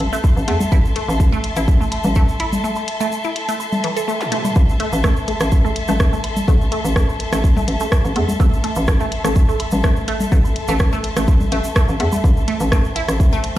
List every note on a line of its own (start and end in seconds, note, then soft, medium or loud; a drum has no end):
0.00 13.58 A4 medium
0.00 13.58 E5 medium
0.00 13.58 A5 medium
0.00 13.58 C6 medium
0.00 closed hi-hat medium
0.13 0.18 A3 medium
0.13 shaker medium
0.24 kick loud
0.24 low woodblock soft
0.24 shaker medium
0.37 0.45 A1 medium
0.37 shaker soft
0.48 0.57 E2 medium
0.48 0.54 A3 loud
0.48 closed hi-hat medium
0.60 low conga medium
0.60 shaker medium
0.72 0.81 A1 loud
0.72 0.78 E4 medium
0.72 kick loud
0.72 shaker medium
0.85 shaker soft
0.96 1.02 A3 medium
0.96 closed hi-hat medium
1.08 1.51 A1 loud
1.08 low woodblock soft
1.08 shaker medium
1.20 kick medium
1.20 shaker medium
1.32 1.38 A3 loud
1.32 shaker soft
1.44 closed hi-hat medium
1.56 1.99 A1 medium
1.56 1.62 E4 medium
1.56 closed hi-hat soft
1.56 shaker medium
1.68 kick loud
1.68 shaker medium
1.81 1.86 A3 medium
1.81 shaker soft
1.92 closed hi-hat medium
1.92 low woodblock soft
2.04 2.59 A1 medium
2.04 low conga medium
2.04 shaker medium
2.15 2.22 A3 loud
2.15 kick loud
2.15 shaker medium
2.29 shaker soft
2.40 2.46 E4 medium
2.40 closed hi-hat medium
2.53 low conga medium
2.53 shaker medium
2.64 2.70 A3 medium
2.64 shaker medium
2.75 low woodblock soft
2.75 shaker soft
2.88 closed hi-hat medium
3.00 3.06 A3 loud
3.00 shaker medium
3.12 shaker medium
3.24 3.30 E4 medium
3.24 shaker soft
3.36 closed hi-hat medium
3.49 3.54 A3 medium
3.49 closed hi-hat soft
3.49 shaker medium
3.60 low woodblock soft
3.60 shaker medium
3.72 low conga medium
3.72 shaker soft
3.84 3.88 E3 medium
3.84 closed hi-hat medium
3.96 4.00 A4 medium
3.96 closed hi-hat soft
3.96 shaker medium
4.08 4.14 A3 medium
4.08 shaker medium
4.21 zap medium
4.21 shaker soft
4.32 4.38 A3 medium
4.32 closed hi-hat medium
4.45 low conga medium
4.45 low woodblock soft
4.45 shaker medium
4.56 4.65 A1 medium
4.56 13.58 A3 medium
4.56 12.27 A4 medium
4.56 kick loud
4.56 low woodblock soft
4.56 shaker medium
4.69 shaker soft
4.80 4.86 A3 loud
4.80 closed hi-hat medium
4.93 5.35 A1 loud
4.93 shaker medium
5.04 5.10 A3 loud
5.04 kick loud
5.04 cross-stick medium
5.04 shaker medium
5.16 shaker soft
5.28 5.34 A3 medium
5.28 closed hi-hat medium
5.40 5.83 A1 medium
5.40 cross-stick medium
5.40 closed hi-hat soft
5.40 low woodblock soft
5.40 shaker medium
5.52 kick loud
5.52 shaker medium
5.65 5.70 A3 loud
5.65 shaker soft
5.76 closed hi-hat medium
5.88 6.43 A1 medium
5.88 5.94 A3 loud
5.88 low conga loud
5.88 shaker medium
6.00 kick loud
6.00 cross-stick medium
6.00 shaker medium
6.13 6.18 A3 medium
6.13 shaker soft
6.24 closed hi-hat medium
6.24 low woodblock soft
6.37 low conga medium
6.37 shaker medium
6.48 6.57 A1 loud
6.48 6.54 A3 loud
6.48 kick loud
6.48 shaker medium
6.61 shaker soft
6.72 6.78 A3 loud
6.72 closed hi-hat medium
6.85 7.27 A1 loud
6.85 shaker medium
6.96 7.02 A3 medium
6.96 kick loud
6.96 cross-stick medium
6.96 shaker medium
7.09 low woodblock soft
7.09 shaker soft
7.20 closed hi-hat medium
7.33 7.63 A1 medium
7.33 7.38 A3 loud
7.33 cross-stick medium
7.33 closed hi-hat soft
7.33 shaker medium
7.44 kick loud
7.44 shaker medium
7.57 7.62 A3 loud
7.57 low conga medium
7.57 shaker soft
7.68 7.77 A1 medium
7.68 closed hi-hat medium
7.80 7.86 A3 medium
7.80 shaker medium
7.92 kick loud
7.92 cross-stick medium
7.92 low woodblock soft
7.92 shaker medium
8.04 8.13 A1 medium
8.04 shaker soft
8.16 8.25 E2 loud
8.16 8.22 A3 loud
8.16 closed hi-hat medium
8.28 low conga medium
8.28 shaker medium
8.40 8.49 A1 loud
8.40 8.46 A3 loud
8.40 kick loud
8.40 shaker medium
8.53 shaker soft
8.64 8.70 A3 medium
8.64 closed hi-hat medium
8.75 9.19 A1 loud
8.75 low woodblock soft
8.75 shaker medium
8.88 kick loud
8.88 cross-stick medium
8.88 shaker medium
9.00 9.06 A3 loud
9.00 shaker soft
9.12 closed hi-hat medium
9.24 9.67 A1 medium
9.24 9.30 A3 loud
9.24 cross-stick medium
9.24 closed hi-hat soft
9.24 shaker medium
9.35 kick loud
9.35 shaker medium
9.49 9.54 A3 medium
9.49 shaker soft
9.60 closed hi-hat loud
9.60 low woodblock soft
9.71 10.27 A1 medium
9.71 low conga medium
9.71 shaker medium
9.84 9.90 A3 loud
9.84 kick loud
9.84 cross-stick medium
9.84 shaker medium
9.96 shaker soft
10.08 10.14 A3 loud
10.08 closed hi-hat loud
10.20 low conga medium
10.20 shaker medium
10.32 10.41 A1 loud
10.32 10.38 A3 medium
10.32 kick loud
10.32 shaker medium
10.45 low woodblock soft
10.45 shaker soft
10.56 closed hi-hat medium
10.68 11.11 A1 loud
10.68 10.74 A3 loud
10.68 shaker medium
10.79 kick loud
10.79 cross-stick medium
10.79 shaker medium
10.92 10.98 A3 loud
10.92 shaker soft
11.04 closed hi-hat medium
11.17 11.47 A1 medium
11.17 11.22 A3 medium
11.17 cross-stick medium
11.17 closed hi-hat soft
11.17 shaker medium
11.28 kick loud
11.28 low woodblock soft
11.28 shaker medium
11.40 low conga medium
11.40 shaker soft
11.52 11.61 A1 medium
11.52 11.58 A3 loud
11.52 closed hi-hat loud
11.64 shaker medium
11.76 11.82 A3 loud
11.76 kick loud
11.76 cross-stick medium
11.76 shaker medium
11.88 11.97 A1 medium
11.88 shaker soft
12.00 12.09 E2 medium
12.00 12.06 A3 medium
12.00 closed hi-hat loud
12.12 low conga medium
12.12 low woodblock soft
12.12 shaker medium
12.24 12.33 A1 loud
12.24 13.58 C4 medium
12.24 kick loud
12.24 low woodblock soft
12.24 shaker medium
12.37 shaker soft
12.48 12.54 A3 loud
12.48 closed hi-hat medium
12.60 13.03 A1 loud
12.60 shaker medium
12.72 12.78 A3 loud
12.72 kick loud
12.72 cross-stick medium
12.72 shaker medium
12.84 shaker soft
12.96 13.00 E4 loud
12.96 closed hi-hat medium
13.09 13.51 A1 medium
13.09 cross-stick medium
13.09 closed hi-hat soft
13.09 low woodblock soft
13.09 shaker medium
13.20 kick loud
13.20 shaker medium
13.32 13.38 A3 loud
13.32 shaker soft
13.44 closed hi-hat medium